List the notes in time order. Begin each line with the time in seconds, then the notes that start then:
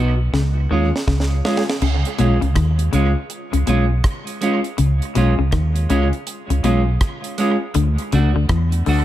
Already playing: B1 B2 B3 D#4 F#4
0.33 C#2 C#3, snare
0.71 D#2 D#3 G#3 C#4 F4
0.96 snare
1.07 C#2 C#3, kick, snare
1.20 snare
1.45 G#3 C#4 F4, snare
1.57 snare
1.68 muted clean electric guitar stroke, snare
1.82 C#2 C#3, crash
2.05 closed hi-hat
2.19 B1 B2 G#3 C#4 F4, closed hi-hat
2.41 C#2 C#3, closed hi-hat
2.55 D#2 D#3, kick, cross-stick, closed hi-hat
2.79 closed hi-hat
2.93 C#2 C#3 G#3 C#4 F4, closed hi-hat
3.30 closed hi-hat
3.53 C#2 C#3, closed hi-hat
3.67 B1 B2 G#3 C#4 F4, closed hi-hat
4.04 kick, cross-stick, closed hi-hat
4.27 closed hi-hat
4.41 G#3 C#4 F4, closed hi-hat
4.64 closed hi-hat
4.78 C#2 C#3, closed hi-hat
5.02 closed hi-hat
5.15 B1 B2 G#3 C#4 F4, closed hi-hat
5.39 C#2 C#3
5.52 D#2 D#3, kick, cross-stick, closed hi-hat
5.76 closed hi-hat
5.90 C#2 C#3 G#3 C#4 F4, closed hi-hat
6.13 closed hi-hat
6.27 closed hi-hat
6.50 C#2 C#3, closed hi-hat
6.64 B1 B2 G#3 C#4 F4, closed hi-hat
7.01 kick, cross-stick, closed hi-hat
7.24 closed hi-hat
7.38 G#3 C#4 F4, closed hi-hat
7.74 D2 D3, closed hi-hat
7.98 closed hi-hat
8.12 C#2 C#3 A3 D4 F#4, closed hi-hat
8.36 D2 D3
8.49 E2 E3, kick, cross-stick, closed hi-hat
8.72 closed hi-hat
8.86 D2 D3 A3 D4 F#4, open hi-hat